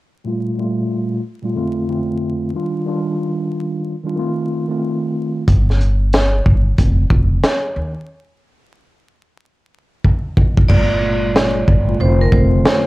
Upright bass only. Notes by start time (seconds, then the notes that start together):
5.48 G1
6.46 G1
6.78 F1
7.10 F1
7.76 D#2
10.70 G1
11.68 G1
12.00 F1
12.32 F1